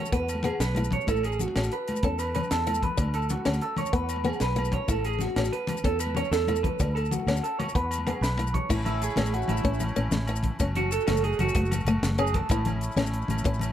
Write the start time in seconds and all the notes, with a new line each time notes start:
Already playing: C#5
0.03 low conga, maracas
0.12 E2 B3 B4, kick, closed hi-hat, maracas
0.27 closed hi-hat, low conga, low agogo, maracas
0.35 high conga
0.43 B3 G#4, closed hi-hat, low conga, low agogo
0.52 low conga
0.59 B1 B4, snare, closed hi-hat, low conga, maracas
0.66 low conga
0.75 E4, closed hi-hat, high conga, low conga, low agogo
0.84 maracas
0.91 C#5, kick, closed hi-hat, low conga
0.98 low conga, maracas
1.07 A1 E4 A4, kick, closed hi-hat, high conga, low agogo, maracas
1.16 maracas
1.23 G#4, closed hi-hat, low agogo, maracas
1.32 maracas
1.39 F#4, closed hi-hat, low conga, maracas
1.48 high conga
1.55 A1 C#4, snare, closed hi-hat, low conga, low agogo
1.63 maracas
1.72 B4, closed hi-hat, low conga
1.88 closed hi-hat, high conga, low agogo
1.96 low conga, maracas
2.03 E2 C#4 A4, kick, closed hi-hat, low conga
2.19 B4, closed hi-hat, low agogo, maracas
2.35 C#4 B4, closed hi-hat, low conga, low agogo
2.43 maracas
2.51 E2 A4, snare, closed hi-hat, maracas
2.59 low conga
2.67 E4, closed hi-hat, high conga, low agogo
2.74 maracas
2.83 B4, kick, closed hi-hat, low conga
2.97 D2 D4, kick, closed hi-hat, high conga, low agogo, maracas
3.14 A4, closed hi-hat, low agogo, maracas
3.22 maracas
3.30 F#4, closed hi-hat, low conga, maracas
3.37 high conga
3.44 D2 C#4, snare, closed hi-hat, low conga, low agogo
3.53 maracas
3.60 A4, closed hi-hat, low conga
3.77 C#5, closed hi-hat, high conga, low conga, low agogo
3.85 low conga, maracas
3.92 E2 B3 B4, kick, closed hi-hat, low conga
4.09 closed hi-hat, low agogo, maracas
4.16 high conga
4.24 B3 G#4, closed hi-hat, low conga, low agogo
4.33 maracas
4.40 B1 B4, snare, closed hi-hat, maracas
4.48 low conga
4.56 E4, closed hi-hat, high conga, low agogo
4.65 maracas
4.72 C#5, kick, closed hi-hat, low conga
4.88 A1 E4 A4, kick, closed hi-hat, high conga, low agogo, maracas
5.04 G#4, closed hi-hat, low agogo, maracas
5.13 maracas
5.19 F#4, snare, closed hi-hat, low conga, maracas
5.27 high conga
5.35 A1 C#4, snare, closed hi-hat, low conga, low agogo
5.44 maracas
5.52 B4, closed hi-hat, low conga
5.67 closed hi-hat, high conga, low conga, low agogo
5.75 low conga, maracas
5.84 E2 C#4 A4, kick, closed hi-hat
6.00 B4, closed hi-hat, low agogo, maracas
6.07 high conga
6.15 C#4 C#5, closed hi-hat, low conga, low agogo
6.24 maracas
6.31 E2 A4, snare, closed hi-hat, maracas
6.40 low conga
6.48 E4, closed hi-hat, high conga, low agogo
6.56 maracas
6.63 B4, kick, closed hi-hat, low conga
6.80 D2 D4, kick, closed hi-hat, high conga, low conga, low agogo, maracas
6.88 low conga
6.95 A4, closed hi-hat, low agogo
7.05 maracas
7.11 F#4, closed hi-hat, low conga, maracas
7.19 high conga
7.27 D2 C#4, snare, closed hi-hat, low conga, low agogo
7.36 low conga, maracas
7.43 A4, closed hi-hat, maracas
7.59 C#5, closed hi-hat, high conga, low conga, low agogo
7.68 low conga, maracas
7.75 E2 B3 B4, kick, closed hi-hat
7.91 closed hi-hat, low agogo, maracas
7.98 high conga
8.06 B3 G#4, closed hi-hat, low conga, low agogo
8.21 B1 B4, snare, closed hi-hat, maracas
8.37 E4, closed hi-hat, high conga, low agogo
8.47 maracas
8.54 C#5, kick, closed hi-hat, low conga
8.61 low conga
8.69 A1 A3 C#4 E4, kick, crash, high conga, low agogo, maracas
8.85 E4, closed hi-hat, low conga, low agogo, maracas
9.02 G#4, closed hi-hat, maracas
9.09 low conga
9.16 A1 C#4, snare, closed hi-hat, high conga, low conga, low agogo
9.25 low conga, maracas
9.32 F#4, closed hi-hat, low conga
9.42 maracas
9.48 A1 E4, closed hi-hat, low conga, low agogo, maracas
9.56 low conga, maracas
9.64 A1 C#4, kick, closed hi-hat, high conga
9.73 low conga, maracas
9.80 closed hi-hat, low conga, low agogo, maracas
9.88 maracas
9.96 A1 C#4, closed hi-hat, low agogo, maracas
10.11 A1, snare, closed hi-hat, high conga, low conga, maracas
10.19 low conga
10.27 E4, closed hi-hat, low agogo
10.36 maracas
10.43 kick, closed hi-hat, low conga
10.52 low conga
10.59 F#1 C#4 F#4, kick, closed hi-hat, high conga, low agogo, maracas
10.76 F#4, closed hi-hat, low conga, low agogo, maracas
10.92 A4, closed hi-hat, maracas
11.00 low conga, maracas
11.07 F#1 A3, snare, closed hi-hat, high conga, low conga, low agogo
11.17 low conga, maracas
11.24 G#4, closed hi-hat, low conga
11.33 maracas
11.39 F#1 F#4, closed hi-hat, low conga, low agogo, maracas
11.48 low conga, maracas
11.55 F#1 A3, kick, closed hi-hat, high conga
11.64 low conga, maracas
11.71 closed hi-hat, low conga, low agogo, maracas
11.80 maracas
11.85 F#1 A3, closed hi-hat, low agogo, maracas
12.03 F#1, snare, closed hi-hat, high conga, low conga, maracas
12.11 low conga
12.18 C#4 G#4, closed hi-hat, low agogo
12.27 maracas
12.34 A4, kick, closed hi-hat, low conga
12.43 low conga
12.49 A1 C#4 E4, kick, closed hi-hat, high conga, low agogo, maracas
12.65 closed hi-hat, low conga, low agogo, maracas
12.81 closed hi-hat, maracas
12.90 low conga, maracas
12.96 A1 C#4, snare, closed hi-hat, high conga, low conga, low agogo
13.05 low conga, maracas
13.12 closed hi-hat, low conga
13.22 maracas
13.28 A1, closed hi-hat, low conga, low agogo, maracas
13.35 low conga, maracas
13.44 A1 C#4, kick, closed hi-hat, high conga
13.52 low conga, maracas
13.59 closed hi-hat, low conga, low agogo, maracas